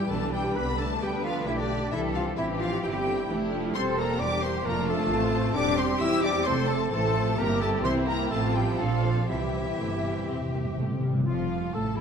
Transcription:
0.07 B1 E3 G3 A3 D4 A4 B4 A5
0.32 G3 G4 G5
0.55 C2 D3 B3 D4 B4 B5
0.78 A3 A4 A5
1.01 D2 D3 G3 B3 G4 B4 G5
1.23 F3 F4 F5
1.46 B1 E3 A3 E4 G4 E5
1.57 D3 D4 D5
1.91 C2 C3 E3 G3 E4 G4 A4 E5
2.14 F3 F4 F5
2.37 A1 E3 C4 E4 G4 E5
2.59 F3 F4 F5
2.83 G1 E3 G3 C4 E4 G4 G5
2.90 F5
2.97 G5
3.07 D3
3.29 F1 E3 A3 D4 E4 G4
3.53 F3
3.74 E1 G3 C4 G4 A4 C5 C6
3.97 A#3 A#4 A#5
4.19 E2 G3 A#3 D4 G4 D5 D6
4.42 C4 C5 C6
4.63 F1 F2 F3 A3 A#3 D4 F4 A4 A#4 A#5
4.86 A3 A4 A5
5.10 A1 E3 C4 C5
5.32 F3
5.54 E1 G3 C4 D4 G4 D5 D6
5.77 C4 C5 C6
6.00 E2 E4 G4 E5 E6
6.23 D4 D5 D6
6.45 F1 A3 C4 A4 C5 C6
6.66 A3 A4 A5
6.90 A1 E3 A3 A4 C5 A5
7.15 F3
7.37 G1 G3 A#3 C4 E4 G4 A#4 A#5
7.60 A3 A4 A5
7.82 C2 E3 C4 E4 C5 C6
8.06 A#3 A#4 A#5
8.29 A1 F3 A3 F4 A4 A5
8.53 G3 G4 G5
8.77 A#1 F3 D4 F4 A4 F5
9.03 C5
9.27 C2 C3 E3 G3 C4 E4 G4 E5
9.46 C3
9.54 C3
9.62 C3
9.70 C3
9.78 G1 C3 A3
9.85 C3
9.94 C3
10.02 C3 G3
10.10 C3
10.18 C3
10.25 E1 C3 C4
10.34 C3
10.41 C3
10.49 C3
10.53 C3 A#3
10.65 C3
10.73 C3
10.77 A1 C3 A3
10.89 C3
10.97 C3
11.03 C3 G3
11.13 C3
11.20 C3
11.25 F1 F2 F3 F4 F5
11.73 A1 A2 A3 A4 A5
11.96 E1 E2 E3 E4 E5

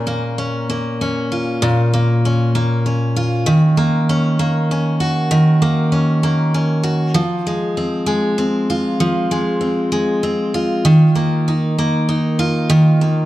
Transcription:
Already playing: A#2 C#4 A#4
0.07 A#3
0.38 C#4
0.70 A#3
1.01 C#4
1.32 F4
1.62 A#2
1.94 A#3
2.25 C#4
2.55 A#3
2.86 C#4
3.16 F4
3.46 D#3
3.77 A#3
4.09 C#4
4.39 A#3
4.71 C#4
5.00 F#4
5.31 D#3
5.62 A#3
5.92 C#4
6.23 A#3
6.54 C#4
6.83 F#4
7.14 F3
7.47 G#3
7.77 C4
8.06 G#3
8.38 C4
8.70 F4
9.00 F3
9.31 G#3
9.61 C4
9.92 G#3
10.23 C4
10.54 F4
10.85 D#3
11.15 A#3
11.48 D#4
11.78 A#3
12.09 D#4
12.39 F4
12.70 D#3
13.01 A#3

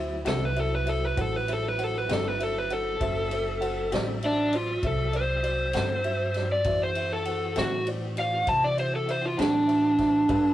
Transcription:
Already playing: D2 F#3 C4 E4 F#4 C5 E5
0.24 C2 D3 A3 C4 F#4 C5 E5, snare, ride
0.28 A4
0.45 B4
0.56 F#4 C5 E5, ride
0.60 A4
0.75 B4
0.86 F#4 A4 C5 E5, ride
1.05 B4
1.16 A1 F#4 C5 F#5, kick, ride
1.21 A4
1.36 B4
1.47 F#4 C5 E5, ride
1.53 A4
1.68 B4
1.78 F#4 C5 F#5, ride
1.84 A4
1.98 B4
2.09 G1 D3 A3 C4 F#4 A4 C5 E5, snare, ride
2.28 B4
2.39 F#4 C5 E5, ride
2.43 A4
2.58 B4
2.69 F#4 A4 C5 F#5, ride
3.00 F#1 F#3 C4 F#4 C5 E5, kick, ride
3.31 F#4 C5 E5, ride
3.60 F#4 C5 F#5, ride
3.91 A1 D3 A3 C4 F#4 C5 D5, snare, ride
4.22 D4 F#4 C5 E5, ride
4.53 F4 F#4 C5 D5, ride
4.83 C2 F#4 C5 E5, kick, ride
4.87 A4
5.12 F#4 C5 D5, ride
5.42 F#4 C5 D5, ride
5.73 G2 D3 A3 C4 F#4 C5 F#5, snare, ride
6.04 F#4 C5 E5, ride
6.34 F#4 C5 D5, snare, ride
6.52 D5
6.64 F#2 E3 C4 F#4 C5 E5, kick, ride
6.83 C5
6.95 F#4 C5 E5, ride
7.13 A4
7.25 F#4 C5 F#5, ride
7.56 A2 D3 A3 C4 F#4 C5 E5, snare, ride
7.86 F#4 C5 D5, ride
8.17 F#4 C5 D5 F5, ride
8.46 C3 F#4 C5 E5 A5, kick, ride
8.64 D5
8.77 F#4 C5 E5, ride
8.96 A4
9.07 F#4 C5 E5, ride
9.26 F4
9.37 A2 D3 A3 C4 D4 F#4 C5 D5, snare, ride
9.67 F#4 C5 E5, ride
9.98 F#4 C5 E5, kick, snare, ride
10.27 G2 G3 B3 D4 F4 A4 B4 F5, kick, ride

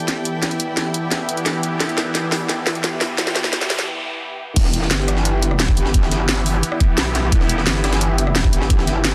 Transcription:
Already playing: E3 B3 E4 G4 A4 D5 G5, riser
0.08 snare, closed hi-hat
0.25 closed hi-hat
0.43 snare, closed hi-hat
0.51 closed hi-hat
0.60 closed hi-hat
0.77 snare, closed hi-hat
0.94 closed hi-hat
1.11 snare, closed hi-hat
1.29 closed hi-hat
1.37 closed hi-hat
1.46 snare, closed hi-hat
1.63 closed hi-hat
1.80 snare, closed hi-hat
1.89 closed hi-hat
1.98 snare, closed hi-hat
2.15 snare, closed hi-hat
2.32 snare, open hi-hat
2.49 snare, closed hi-hat
2.67 snare, closed hi-hat
2.75 closed hi-hat
2.84 snare, closed hi-hat
3.01 snare, open hi-hat
3.18 snare, closed hi-hat
3.27 snare, closed hi-hat
3.36 snare, closed hi-hat
3.44 snare
3.53 snare, closed hi-hat
3.61 snare
3.70 snare, open hi-hat
3.79 snare
4.56 E1 E3 B3 E4 G4, kick, closed hi-hat, crash
4.65 snare
4.74 closed hi-hat
4.82 snare
4.91 G1, snare, closed hi-hat
4.99 snare
5.08 cross-stick, closed hi-hat
5.17 snare
5.25 closed hi-hat
5.43 closed hi-hat
5.51 cross-stick
5.60 snare, closed hi-hat
5.68 kick
5.77 G1, closed hi-hat
5.86 snare
5.94 kick, closed hi-hat
6.03 snare
6.11 snare, closed hi-hat
6.29 snare, closed hi-hat
6.46 closed hi-hat, open hi-hat
6.63 closed hi-hat
6.72 cross-stick
6.80 kick, closed hi-hat
6.98 B1, snare, closed hi-hat, open hi-hat
7.15 snare, closed hi-hat
7.32 E1, kick, closed hi-hat
7.41 snare
7.49 closed hi-hat
7.58 snare
7.67 G1, snare, closed hi-hat
7.75 snare
7.84 cross-stick, snare, closed hi-hat
7.93 snare, closed hi-hat
8.01 closed hi-hat
8.18 closed hi-hat
8.27 cross-stick
8.36 snare, closed hi-hat
8.44 kick
8.53 G1, closed hi-hat
8.62 snare
8.70 kick, closed hi-hat
8.79 snare
8.87 snare, closed hi-hat
9.05 snare, closed hi-hat

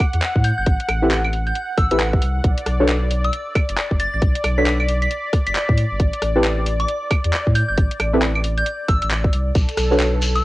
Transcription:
Already playing: F#5
0.00 kick, cross-stick, open hi-hat, claves
0.13 E2, closed hi-hat
0.22 clap, open hi-hat
0.36 A2, kick
0.44 G6, open hi-hat
0.58 G1 G6
0.66 A1, kick, closed hi-hat
0.80 closed hi-hat
0.89 A1, cross-stick, open hi-hat, claves
1.02 C4 E4 G4 A4 B4
1.11 clap, closed hi-hat
1.24 claves
1.33 open hi-hat
1.47 G6, closed hi-hat
1.55 closed hi-hat
1.78 A1 E6, kick, cross-stick, open hi-hat
1.91 A1 C4 E4 G4 A4 B4 E6, closed hi-hat
2.00 clap, closed hi-hat
2.13 kick
2.22 C2, open hi-hat
2.44 B1 D5, kick, closed hi-hat
2.58 closed hi-hat
2.66 B1, cross-stick, open hi-hat
2.80 D4 F#4 A4 B4 C#5
2.89 clap, closed hi-hat
3.11 open hi-hat
3.24 E6, closed hi-hat
3.33 closed hi-hat
3.55 kick, cross-stick, open hi-hat, claves
3.69 F#1, closed hi-hat
3.78 clap, open hi-hat
3.91 F#1, kick
4.00 A6, open hi-hat
4.13 A1 A6
4.22 B1, kick, closed hi-hat
4.35 closed hi-hat
4.44 B1, cross-stick, open hi-hat, claves
4.58 D4 F#4 A4 B4 C#5 B6
4.66 B6, clap, closed hi-hat
4.80 claves
4.89 open hi-hat
5.02 B6, closed hi-hat
5.11 closed hi-hat
5.33 kick, cross-stick, open hi-hat
5.47 F#1 B6, closed hi-hat
5.55 clap, closed hi-hat
5.69 A2, kick
5.78 open hi-hat
5.91 G1
6.00 A1, kick, closed hi-hat
6.13 closed hi-hat
6.22 A1, cross-stick, open hi-hat
6.35 C4 E4 G4 A4 B4
6.44 clap, closed hi-hat
6.66 open hi-hat
6.80 D6, closed hi-hat
6.88 closed hi-hat
7.11 kick, cross-stick, open hi-hat, claves
7.24 E2, closed hi-hat
7.33 clap, open hi-hat
7.47 A2, kick
7.55 G6, open hi-hat
7.68 G1 G6
7.77 A1, kick, closed hi-hat
7.91 closed hi-hat
8.00 A1, cross-stick, open hi-hat, claves
8.13 C4 E4 G4 A4 B4
8.22 clap, closed hi-hat
8.35 claves
8.44 open hi-hat
8.58 G6, closed hi-hat
8.66 closed hi-hat
8.88 A1 E6, kick, cross-stick, open hi-hat
9.02 A1 E6, closed hi-hat
9.11 clap, closed hi-hat
9.24 kick
9.33 C2, open hi-hat
9.55 B1 A4, kick, closed hi-hat, shekere
9.69 closed hi-hat, shekere
9.77 B1, cross-stick, open hi-hat, shekere
9.91 D4 F#4 A4 B4 C#5, shekere
10.00 clap, closed hi-hat, shekere
10.22 open hi-hat, shekere
10.35 E6, closed hi-hat, shekere

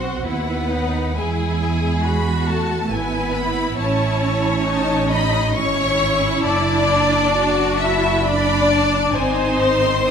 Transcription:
Already playing: B1 C4 F#4 C5 F#5
0.26 D#2 B3 E4 B4 F#5
0.72 D#4
1.16 E2 G#3 E4 G#4 G#5
2.03 F#4 B5
2.48 A3 A4 A5
2.91 G#1 B3 E4 B4 G#5
3.34 B5
3.78 A1 C#4 C#5 A5
4.66 D#4 A5
5.08 C#4 D#4 D#5 B5
5.52 G#1 C#4 E4 C#5 C#6
6.44 F#1 D4 D5 A5
7.33 F#4
7.81 E4 E5
8.24 D4 D5 B5
8.69 A5
9.12 G#1 C4 D#4 C5 G#5
9.60 C6
10.06 D#4 D#6

